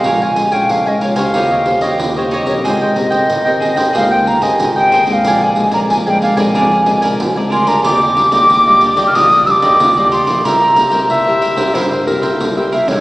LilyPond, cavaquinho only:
\new Staff \with { instrumentName = "Cavaquinho" } { \time 4/4 \key ees \mixolydian \tempo 4 = 92 <bes' des'' f'' aes''>16 <des'' f'' aes''>16 r16 <des'' f'' aes''>8 <des'' f'' aes''>16 <bes' des'' f'' aes''>16 <des'' f'' aes''>16 <ees' g' des'' ees''>16 <g' des'' ees''>16 r16 <g' des'' ees''>8 <g' des'' ees''>16 <ees' g' des'' ees''>8 | <aes' c'' ees'' g''>16 <c'' ees'' g''>16 r16 <c'' ees'' g''>8 <c'' ees'' g''>16 <aes' c'' ees'' g''>16 <c'' ees'' g''>16 <aes' c'' ees'' g''>16 <c'' ees'' g''>16 r16 <c'' ees''>8 <c'' ees'' g''>16 <aes' c'' ees'' g''>8 | <d' bes' d'' aes''>16 <bes' d'' aes''>16 r16 <bes' d'' aes''>8 <bes' d'' aes''>16 <d' bes' d'' aes''>16 <bes' d'' aes''>16 <d' bes' d'' aes''>16 <bes' d'' aes''>16 r16 <bes' d'' aes''>8 <bes' d'' aes''>16 <d' bes' d'' aes''>8 | <d' g' d'' ees''>16 <g' d'' ees''>16 r16 <g' d'' ees''>8 <g' d'' ees''>16 <d' g' d'' ees''>16 <g' d'' ees''>16 <d' g' d'' ees''>16 <g' d'' ees''>16 r16 <g' d'' ees''>8 <g' d'' ees''>16 <g' d'' ees''>8 |
<e' bes' c'' e''>16 <bes' c'' e''>16 r16 <bes' c'' e''>8 <bes' c'' e''>16 <e' bes' c'' e''>16 <bes' c'' e''>16 <e' bes' c'' e''>16 <bes' c'' e''>16 r16 <bes' c'' e''>8 <bes' c'' e''>16 <e' bes' c'' e''>8 | }